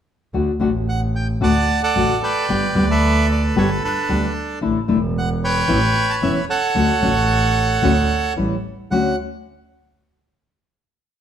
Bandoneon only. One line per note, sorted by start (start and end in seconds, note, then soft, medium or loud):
0.89 1.01 F#5 medium
1.16 1.27 G5 medium
1.43 1.82 D5 medium
1.43 1.82 F#5 medium
1.43 1.80 A5 medium
1.83 2.46 A4 medium
1.83 2.22 D5 medium
1.83 2.20 F#5 medium
2.23 2.89 B4 medium
2.23 3.26 D5 medium
2.23 2.86 G5 medium
2.91 3.56 A4 medium
2.91 3.83 B4 medium
2.91 3.27 E5 medium
3.32 3.43 D5 medium
3.57 4.59 A4 medium
3.57 3.70 C#5 medium
3.85 4.59 D4 soft
3.85 4.33 B4 medium
5.18 5.29 F#5 medium
5.44 6.45 B4 medium
5.44 6.45 C#5 medium
5.44 6.11 G5 loud
6.10 6.15 A5 medium
6.23 6.34 E5 medium
6.49 8.33 A4 medium
6.49 8.33 C#5 medium
6.49 8.33 F#5 medium
8.91 9.16 F#5 medium